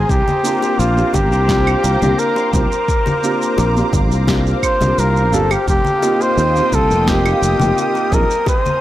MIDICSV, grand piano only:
0, 0, Header, 1, 2, 480
1, 0, Start_track
1, 0, Tempo, 697674
1, 65, Time_signature, 4, 2, 24, 8
1, 6060, End_track
2, 0, Start_track
2, 0, Title_t, "Grand piano"
2, 0, Program_c, 0, 0
2, 296, Note_on_c, 0, 58, 91
2, 300, Note_on_c, 0, 60, 77
2, 302, Note_on_c, 0, 62, 84
2, 305, Note_on_c, 0, 65, 80
2, 308, Note_on_c, 0, 67, 100
2, 634, Note_off_c, 0, 58, 0
2, 637, Note_off_c, 0, 60, 0
2, 637, Note_off_c, 0, 62, 0
2, 639, Note_off_c, 0, 65, 0
2, 641, Note_off_c, 0, 67, 0
2, 658, Note_on_c, 0, 58, 75
2, 662, Note_on_c, 0, 60, 63
2, 665, Note_on_c, 0, 62, 66
2, 668, Note_on_c, 0, 65, 69
2, 670, Note_on_c, 0, 67, 82
2, 992, Note_off_c, 0, 58, 0
2, 994, Note_off_c, 0, 60, 0
2, 996, Note_off_c, 0, 62, 0
2, 997, Note_off_c, 0, 65, 0
2, 998, Note_off_c, 0, 67, 0
2, 1016, Note_on_c, 0, 58, 80
2, 1019, Note_on_c, 0, 60, 75
2, 1024, Note_on_c, 0, 62, 70
2, 1027, Note_on_c, 0, 65, 75
2, 1029, Note_on_c, 0, 67, 92
2, 1355, Note_off_c, 0, 58, 0
2, 1356, Note_off_c, 0, 60, 0
2, 1359, Note_off_c, 0, 62, 0
2, 1360, Note_off_c, 0, 65, 0
2, 1361, Note_off_c, 0, 67, 0
2, 1382, Note_on_c, 0, 58, 73
2, 1384, Note_on_c, 0, 60, 70
2, 1388, Note_on_c, 0, 62, 68
2, 1389, Note_on_c, 0, 65, 63
2, 1395, Note_on_c, 0, 67, 84
2, 1714, Note_off_c, 0, 58, 0
2, 1715, Note_off_c, 0, 60, 0
2, 1717, Note_off_c, 0, 62, 0
2, 1718, Note_off_c, 0, 65, 0
2, 1720, Note_off_c, 0, 67, 0
2, 1741, Note_on_c, 0, 58, 88
2, 1743, Note_on_c, 0, 60, 78
2, 1746, Note_on_c, 0, 62, 79
2, 1748, Note_on_c, 0, 65, 83
2, 1751, Note_on_c, 0, 67, 92
2, 1818, Note_off_c, 0, 58, 0
2, 1819, Note_off_c, 0, 60, 0
2, 1820, Note_off_c, 0, 62, 0
2, 1821, Note_off_c, 0, 65, 0
2, 1823, Note_off_c, 0, 67, 0
2, 2220, Note_on_c, 0, 58, 89
2, 2222, Note_on_c, 0, 60, 80
2, 2226, Note_on_c, 0, 62, 79
2, 2228, Note_on_c, 0, 65, 85
2, 2232, Note_on_c, 0, 67, 95
2, 2556, Note_off_c, 0, 58, 0
2, 2558, Note_off_c, 0, 60, 0
2, 2559, Note_off_c, 0, 62, 0
2, 2560, Note_off_c, 0, 65, 0
2, 2562, Note_off_c, 0, 67, 0
2, 2585, Note_on_c, 0, 58, 77
2, 2587, Note_on_c, 0, 60, 67
2, 2592, Note_on_c, 0, 62, 67
2, 2596, Note_on_c, 0, 65, 67
2, 2599, Note_on_c, 0, 67, 79
2, 2916, Note_off_c, 0, 58, 0
2, 2917, Note_off_c, 0, 60, 0
2, 2919, Note_off_c, 0, 62, 0
2, 2921, Note_off_c, 0, 65, 0
2, 2922, Note_off_c, 0, 67, 0
2, 2940, Note_on_c, 0, 58, 85
2, 2943, Note_on_c, 0, 60, 75
2, 2946, Note_on_c, 0, 62, 77
2, 2949, Note_on_c, 0, 65, 72
2, 2950, Note_on_c, 0, 67, 96
2, 3276, Note_off_c, 0, 58, 0
2, 3278, Note_off_c, 0, 60, 0
2, 3280, Note_off_c, 0, 62, 0
2, 3281, Note_off_c, 0, 65, 0
2, 3281, Note_off_c, 0, 67, 0
2, 3304, Note_on_c, 0, 58, 71
2, 3308, Note_on_c, 0, 60, 69
2, 3311, Note_on_c, 0, 62, 68
2, 3313, Note_on_c, 0, 65, 70
2, 3317, Note_on_c, 0, 67, 80
2, 3635, Note_off_c, 0, 58, 0
2, 3637, Note_off_c, 0, 60, 0
2, 3638, Note_off_c, 0, 62, 0
2, 3640, Note_off_c, 0, 65, 0
2, 3642, Note_off_c, 0, 67, 0
2, 3661, Note_on_c, 0, 58, 89
2, 3664, Note_on_c, 0, 60, 77
2, 3666, Note_on_c, 0, 62, 82
2, 3670, Note_on_c, 0, 65, 85
2, 3673, Note_on_c, 0, 67, 104
2, 3737, Note_off_c, 0, 58, 0
2, 3739, Note_off_c, 0, 60, 0
2, 3740, Note_off_c, 0, 62, 0
2, 3742, Note_off_c, 0, 65, 0
2, 3743, Note_off_c, 0, 67, 0
2, 4144, Note_on_c, 0, 58, 91
2, 4146, Note_on_c, 0, 60, 83
2, 4151, Note_on_c, 0, 63, 86
2, 4153, Note_on_c, 0, 65, 83
2, 4156, Note_on_c, 0, 67, 103
2, 4478, Note_off_c, 0, 58, 0
2, 4480, Note_off_c, 0, 60, 0
2, 4482, Note_off_c, 0, 63, 0
2, 4483, Note_off_c, 0, 65, 0
2, 4485, Note_off_c, 0, 67, 0
2, 4507, Note_on_c, 0, 58, 75
2, 4513, Note_on_c, 0, 60, 69
2, 4517, Note_on_c, 0, 63, 68
2, 4519, Note_on_c, 0, 65, 67
2, 4520, Note_on_c, 0, 67, 82
2, 4837, Note_off_c, 0, 58, 0
2, 4839, Note_off_c, 0, 60, 0
2, 4842, Note_off_c, 0, 63, 0
2, 4843, Note_off_c, 0, 65, 0
2, 4843, Note_off_c, 0, 67, 0
2, 4859, Note_on_c, 0, 58, 91
2, 4861, Note_on_c, 0, 60, 78
2, 4863, Note_on_c, 0, 63, 79
2, 4868, Note_on_c, 0, 65, 78
2, 4872, Note_on_c, 0, 67, 94
2, 5196, Note_off_c, 0, 58, 0
2, 5197, Note_off_c, 0, 60, 0
2, 5198, Note_off_c, 0, 63, 0
2, 5200, Note_off_c, 0, 65, 0
2, 5202, Note_off_c, 0, 67, 0
2, 5222, Note_on_c, 0, 58, 73
2, 5225, Note_on_c, 0, 60, 70
2, 5227, Note_on_c, 0, 63, 75
2, 5230, Note_on_c, 0, 65, 69
2, 5234, Note_on_c, 0, 67, 83
2, 5554, Note_off_c, 0, 58, 0
2, 5556, Note_off_c, 0, 60, 0
2, 5557, Note_off_c, 0, 63, 0
2, 5558, Note_off_c, 0, 65, 0
2, 5560, Note_off_c, 0, 67, 0
2, 5580, Note_on_c, 0, 58, 96
2, 5583, Note_on_c, 0, 60, 81
2, 5585, Note_on_c, 0, 63, 81
2, 5586, Note_on_c, 0, 65, 83
2, 5591, Note_on_c, 0, 68, 102
2, 5657, Note_off_c, 0, 58, 0
2, 5659, Note_off_c, 0, 60, 0
2, 5660, Note_off_c, 0, 63, 0
2, 5660, Note_off_c, 0, 65, 0
2, 5663, Note_off_c, 0, 68, 0
2, 6060, End_track
0, 0, End_of_file